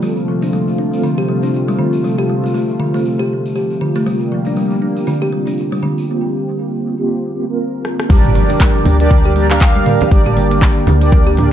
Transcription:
Already playing: F3
0.02 C3 G3 A3 C4 F4 A4, tambourine
0.17 tambourine
0.28 F3
0.42 D4, tambourine
0.53 G3, tambourine
0.68 tambourine
0.78 D4
0.93 A3 C4 F4 A4, tambourine
1.03 D3, tambourine
1.18 G4, tambourine
1.29 G3 A3 C4 F4 A4
1.43 D4, tambourine
1.54 tambourine
1.68 G3, tambourine
1.79 D3
1.93 tambourine
2.04 G3 A3 C4 F4 A4, tambourine
2.18 G4, tambourine
2.29 G3
2.44 A3, tambourine
2.54 A3, tambourine
2.69 tambourine
2.80 D3
2.94 A3 C4 F4 A4, tambourine
3.06 tambourine
3.19 G4, tambourine
3.31 A3 C4 F4 A4
3.46 tambourine
3.56 G4, tambourine
3.70 tambourine
3.81 D3
3.96 A3, tambourine
4.06 G3 A#3 C4 F4 G4, tambourine
4.21 tambourine
4.32 F3
4.45 D4, tambourine
4.56 G3, tambourine
4.71 tambourine
4.82 D4
4.97 A#3 C4 F4 G4, tambourine
5.07 D3, tambourine
5.22 G4, tambourine
5.33 G3 A#3 C4 F4
5.47 D4, tambourine
5.58 tambourine
5.72 G3, tambourine
5.83 D3
5.98 tambourine
6.09 A#3 C4 F4 G4
6.99 A#3 C4 F4 G4
7.34 A#3 C4 F4 G4
7.49 A#3 C4 F4 A#4
7.85 cross-stick
8.00 cross-stick
8.10 G1 D3 G3 A#3 D4 G4 A#4 D5, kick, closed hi-hat, tambourine, impact
8.24 mid tom, tambourine, muted conga
8.35 F3, open hi-hat, high conga
8.49 D4, closed hi-hat, tambourine
8.60 G3, kick, clap, closed hi-hat, muted conga, high conga
8.75 tambourine
8.85 D2 D4, open hi-hat, high conga, low conga
9.00 D4 G4 A#4 D5, closed hi-hat, tambourine
9.11 D3, kick, closed hi-hat, tambourine, muted conga
9.25 G4, tambourine
9.36 G3 D4 G4 A#4 D5, open hi-hat
9.50 D4 G4 A#4 F5, clap, closed hi-hat, tambourine, muted conga
9.61 kick, clap, closed hi-hat, tambourine
9.76 G3, tambourine
9.86 D3, mid tom, open hi-hat, muted conga
10.01 closed hi-hat, tambourine, low conga
10.11 G1 G3 D4 G4 A#4 D5, kick, closed hi-hat, tambourine
10.26 G4, mid tom, tambourine, muted conga
10.37 G3, open hi-hat, high conga
10.51 A#3, closed hi-hat, tambourine
10.62 A#3, kick, clap, closed hi-hat, tambourine, muted conga, high conga
10.77 tambourine
10.87 D2 D3, open hi-hat, high conga, low conga
11.01 A#3 D4 G4 A#4 D5, closed hi-hat, tambourine
11.12 kick, closed hi-hat, tambourine, muted conga, low conga
11.27 G4, tambourine
11.37 D4 G4 A#4 D5, mid tom, open hi-hat, low conga

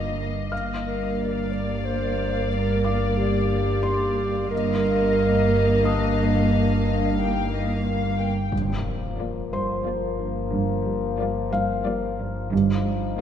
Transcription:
Already playing: G1 G2 A#3 F4 D#5 F5 D6
0.52 G1 G2 A#3 F5 F6
0.86 A#4
1.20 D5
1.52 D5
1.85 C5
2.51 A#4
2.84 F5 D6
3.17 G4
3.83 C6
4.51 G1 G2 A#3 A#4 D#5 F5
5.85 D4 D#6
6.52 D4
7.18 D#4 G5
7.51 D#5
7.85 F5
8.18 G5
8.51 G1 G2 F3 A#3, impact
8.86 G3
9.19 G3 A#3 F4 D5
9.53 G2 C5 C6
9.85 G3 A#3 F4 D5
10.18 G2
10.52 G1 G2
10.86 G3
11.19 G3 A#3 F4 D5
11.52 G2 F5
11.85 G3 A#3 F4 D5
12.19 G2
12.51 G1 G2 F3 D#4
12.86 G3

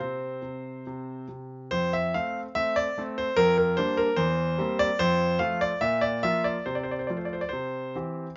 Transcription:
0.00 C3 C4 C5
0.42 C3
0.87 C3
1.28 C3
1.71 F2 C5
1.93 E5
2.14 A3 C4 F5
2.55 A3 C4 E5
2.76 D5
2.98 A3 C4
3.18 C5
3.37 F2 A#4
3.58 A#4
3.77 G3 A#3 D4 C5
3.97 A#4
4.16 E2 C5
4.58 G3 A#3 C4
4.79 D5
4.99 F2 C5
5.39 F3 A3 F4 F5
5.61 D5
5.81 A#2 E5
6.01 D5
6.23 F3 A#3 F4 E5
6.44 D5
6.66 C3 C5
6.75 D5
6.83 C5
6.91 D5
6.99 C5
7.07 F3 A3 F4 D5
7.17 C5
7.25 D5
7.33 C5
7.41 D5
7.49 C5
7.53 C3
7.95 E3 C4 G4

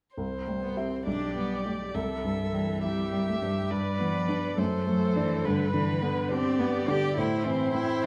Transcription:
0.16 C2 C5
0.46 G3 A3
0.63 B3
0.77 C4 G4 E5
1.06 B1 D4 G4 D5
1.36 G3 B3
1.65 A3 G4 D5
1.95 C2 G3 A4 E5
2.24 G2 G3
2.53 E3 G3
2.83 G3 E4 G4 E5
3.12 G3
3.28 A3
3.42 G2 G3
3.70 G2 B4 D5
3.99 E3 B3
4.14 F3
4.27 G3 D4 D5
4.57 F#2 A3 A4 C5
4.86 F#3 A3
5.15 E3 D4 D5
5.45 G2 D3 B4
5.73 D3 E3
6.02 D3 B3
6.31 C4 D4 G4 D5
6.59 B3
6.88 D3 G4
7.17 A2 E4 C5
7.45 E3 C4
7.74 C4 E4

